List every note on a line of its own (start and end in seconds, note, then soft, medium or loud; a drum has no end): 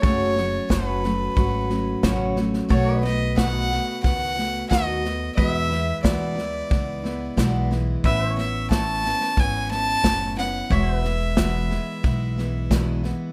0.02 0.57 F#1 medium
0.02 0.37 F#2 medium
0.02 0.37 C#3 medium
0.02 0.37 F#3 medium
0.02 0.37 A3 medium
0.02 0.36 C#4 medium
0.02 0.35 F#4 medium
0.02 2.67 A4 medium
0.02 2.68 C#5 medium
0.02 0.72 C#5 medium
0.02 kick loud
0.02 snare soft
0.36 0.69 F#3 soft
0.36 0.69 A3 soft
0.36 0.69 C#4 soft
0.36 0.69 F#4 soft
0.36 snare soft
0.69 1.27 F#1 medium
0.69 1.03 F#2 medium
0.69 1.03 C#3 medium
0.69 1.03 F#3 medium
0.69 1.03 A3 medium
0.69 1.02 C#4 medium
0.69 1.02 F#4 medium
0.69 2.37 B4 medium
0.69 kick medium
0.69 snare loud
0.69 hi-hat pedal medium
1.03 1.34 F#3 soft
1.03 1.35 A3 soft
1.03 1.36 C#4 soft
1.03 1.36 F#4 soft
1.03 snare soft
1.35 1.93 G#1 medium
1.35 1.69 F#3 medium
1.35 1.70 A3 medium
1.35 1.69 C#4 medium
1.35 1.69 F#4 medium
1.35 kick loud
1.35 snare soft
1.70 2.02 F#3 soft
1.70 2.03 A3 soft
1.70 2.03 C#4 soft
1.70 2.03 F#4 soft
1.70 snare soft
2.03 2.60 A1 medium
2.03 2.37 F#2 medium
2.03 2.37 C#3 loud
2.03 2.37 F#3 medium
2.03 2.37 A3 medium
2.03 2.36 C#4 medium
2.03 2.36 F#4 medium
2.03 kick medium
2.03 snare loud
2.03 hi-hat pedal medium
2.36 2.69 F#3 soft
2.36 2.68 A3 medium
2.36 2.69 C#4 soft
2.36 2.69 F#4 medium
2.36 snare soft
2.54 snare soft
2.69 3.77 B1 medium
2.69 3.03 B2 medium
2.69 3.03 D#3 medium
2.69 3.03 A3 medium
2.69 3.03 B3 medium
2.69 3.02 F#4 medium
2.69 2.95 A4 medium
2.69 3.02 C#5 medium
2.69 2.96 C#5 medium
2.69 kick loud
2.69 snare soft
2.95 5.35 B4 medium
2.95 5.35 D#5 medium
3.03 3.35 A3 soft
3.03 3.36 B3 soft
3.03 3.36 F#4 soft
3.03 3.35 D#5 medium
3.03 snare soft
3.36 3.70 B2 medium
3.36 3.70 D#3 medium
3.36 3.70 A3 medium
3.36 3.70 B3 medium
3.36 3.69 F#4 medium
3.36 4.00 F#5 medium
3.36 kick medium
3.36 snare medium
3.36 hi-hat pedal medium
3.70 4.02 A3 soft
3.70 4.03 B3 soft
3.70 4.04 F#4 soft
3.70 snare soft
4.02 4.61 C#2 medium
4.02 4.36 D#3 medium
4.02 4.37 A3 medium
4.02 4.36 B3 medium
4.02 4.35 F#4 medium
4.02 4.66 F#5 loud
4.02 kick loud
4.02 snare soft
4.36 4.69 A3 soft
4.36 4.70 B3 soft
4.36 4.70 F#4 soft
4.36 snare soft
4.70 5.28 D#2 medium
4.70 5.03 B2 medium
4.70 5.04 D#3 medium
4.70 5.04 A3 medium
4.70 5.03 B3 medium
4.70 5.02 F#4 medium
4.70 5.33 D#5 medium
4.70 kick medium
4.70 snare medium
4.70 hi-hat pedal medium
5.03 5.37 A3 soft
5.03 5.37 B3 soft
5.03 5.37 F#4 soft
5.03 snare soft
5.35 5.71 E2 medium
5.35 5.91 E2 medium
5.35 5.71 B2 medium
5.35 5.71 E3 medium
5.35 5.70 G#3 medium
5.35 5.69 B3 medium
5.35 5.68 E4 medium
5.35 8.01 B4 medium
5.35 5.57 D#5 medium
5.35 5.99 E5 medium
5.35 kick loud
5.35 snare soft
5.57 8.01 E5 medium
5.69 6.02 E3 soft
5.69 6.02 G#3 soft
5.69 6.03 B3 soft
5.69 6.03 E4 medium
5.69 snare soft
6.03 6.61 D2 medium
6.03 6.37 E2 medium
6.03 6.37 B2 medium
6.03 6.37 E3 medium
6.03 6.36 G#3 medium
6.03 6.35 B3 medium
6.03 6.34 E4 medium
6.03 7.66 D5 medium
6.03 kick medium
6.03 snare loud
6.03 hi-hat pedal medium
6.35 6.68 E3 soft
6.35 6.69 G#3 soft
6.35 6.69 B3 soft
6.35 6.70 E4 soft
6.35 snare soft
6.69 7.28 C#2 medium
6.69 7.03 E3 medium
6.69 7.04 G#3 medium
6.69 7.04 B3 medium
6.69 7.02 E4 medium
6.69 kick loud
6.69 snare soft
7.03 7.37 E3 soft
7.03 7.37 G#3 soft
7.03 7.37 B3 medium
7.03 7.37 E4 medium
7.03 snare soft
7.37 7.94 B1 medium
7.37 7.71 E2 medium
7.37 7.70 B2 medium
7.37 7.71 E3 medium
7.37 7.70 G#3 medium
7.37 7.70 B3 medium
7.37 7.69 E4 loud
7.37 kick medium
7.37 snare medium
7.37 hi-hat pedal medium
7.71 8.04 E3 soft
7.71 8.05 G#3 soft
7.71 8.04 B3 medium
7.71 8.04 E4 medium
7.71 snare soft
8.04 9.11 A1 medium
8.04 8.38 A2 medium
8.04 8.38 E3 medium
8.04 8.38 B3 medium
8.04 8.38 C#4 medium
8.04 8.36 E4 medium
8.04 8.31 B4 medium
8.04 8.36 E5 medium
8.04 10.69 E5 medium
8.04 kick loud
8.04 snare soft
8.31 10.69 C#5 medium
8.38 8.70 B3 soft
8.38 8.70 C#4 soft
8.38 8.71 E4 soft
8.38 8.69 E5 medium
8.38 snare soft
8.70 9.04 A2 medium
8.70 9.04 E3 medium
8.70 9.04 B3 medium
8.70 9.03 C#4 medium
8.70 9.02 E4 medium
8.70 9.41 A5 loud
8.70 kick medium
8.70 snare medium
8.70 hi-hat pedal medium
9.04 9.37 B3 soft
9.04 9.37 C#4 soft
9.04 9.37 E4 medium
9.04 snare soft
9.21 snare soft
9.37 9.94 G#1 medium
9.37 9.71 E3 medium
9.37 9.71 B3 medium
9.37 9.71 C#4 medium
9.37 9.70 E4 medium
9.37 9.70 G#5 loud
9.37 kick loud
9.37 snare soft
9.71 10.03 B3 soft
9.71 10.04 C#4 soft
9.71 10.04 E4 soft
9.71 10.33 A5 loud
9.71 snare soft
10.04 10.60 F#1 medium
10.04 10.37 A2 medium
10.04 10.37 E3 medium
10.04 10.37 B3 medium
10.04 10.37 C#4 medium
10.04 10.36 E4 medium
10.04 kick medium
10.04 snare loud
10.04 hi-hat pedal medium
10.37 10.71 B3 soft
10.37 10.71 C#4 soft
10.37 10.71 E4 medium
10.37 10.74 F#5 medium
10.37 snare soft
10.70 11.77 E1 medium
10.70 11.04 E2 medium
10.70 11.04 B2 medium
10.70 11.04 E3 medium
10.70 11.03 G#3 medium
10.70 11.03 B3 medium
10.70 11.02 E4 medium
10.70 10.97 C#5 medium
10.70 13.32 E5 medium
10.70 12.71 E5 medium
10.70 kick medium
10.70 snare soft
10.97 13.32 B4 medium
11.03 11.36 E3 soft
11.03 11.36 G#3 soft
11.03 11.36 B3 soft
11.03 11.37 E4 soft
11.03 snare soft
11.37 11.70 E2 medium
11.37 11.70 B2 medium
11.37 11.71 E3 medium
11.37 11.70 G#3 medium
11.37 11.69 B3 medium
11.37 11.68 E4 medium
11.37 kick medium
11.37 snare loud
11.37 hi-hat pedal medium
11.70 12.02 E3 soft
11.70 12.03 G#3 medium
11.70 12.04 B3 medium
11.70 12.03 E4 medium
11.70 snare soft
12.03 13.10 B1 medium
12.03 12.37 E3 medium
12.03 12.37 G#3 medium
12.03 12.37 B3 medium
12.03 12.36 E4 medium
12.03 kick loud
12.03 snare soft
12.38 12.70 E3 soft
12.38 12.70 G#3 soft
12.38 12.71 B3 medium
12.38 12.71 E4 soft
12.38 snare soft
12.71 13.04 E2 medium
12.71 13.04 B2 medium
12.71 13.04 E3 medium
12.71 13.04 G#3 medium
12.71 13.03 B3 medium
12.71 13.02 E4 medium
12.71 kick medium
12.71 snare medium
12.71 hi-hat pedal medium
13.03 13.32 E3 soft
13.03 13.32 G#3 soft
13.03 13.32 B3 medium
13.03 13.32 E4 medium
13.03 snare soft